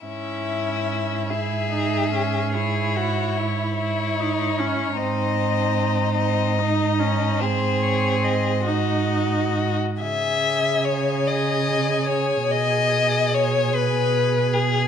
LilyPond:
<<
  \new Staff \with { instrumentName = "Violin" } { \time 12/8 \key cis \minor \tempo 4. = 49 e''4. e''4. cis''4. cis''4. | dis''4. dis''4. bis'8 cis''8 dis''8 dis''4~ dis''16 r16 | gis''1. | }
  \new Staff \with { instrumentName = "Violin" } { \time 12/8 \key cis \minor e'4. gis'4. gis'8 fis'8 e'2 | dis'2. gis'4. fis'4~ fis'16 r16 | e''4 cis''8 dis''4 cis''8 dis''4 cis''8 b'4 gis'8 | }
  \new Staff \with { instrumentName = "Viola" } { \time 12/8 \key cis \minor cis'4. e'8 dis'8 cis'8 e'4. e'8 dis'8 cis'8 | bis4. bis8 dis'8 cis'8 bis4. dis'4~ dis'16 r16 | gis'1. | }
  \new Staff \with { instrumentName = "Cello" } { \clef bass \time 12/8 \key cis \minor gis,1. | gis,1~ gis,4.~ gis,16 r16 | cis2. b,2. | }
>>